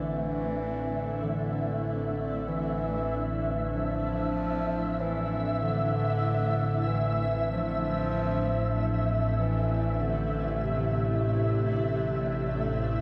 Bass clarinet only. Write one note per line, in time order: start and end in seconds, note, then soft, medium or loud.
0.00 1.25 E3 medium
1.23 2.49 D3 medium
2.48 3.47 E3 medium
3.74 5.03 F3 loud
5.01 5.63 E3 medium
5.62 6.89 D3 medium
6.87 7.50 E3 medium
7.51 9.08 F3 loud
9.39 10.03 E3 medium
10.02 10.66 D3 medium
10.65 13.01 C3 medium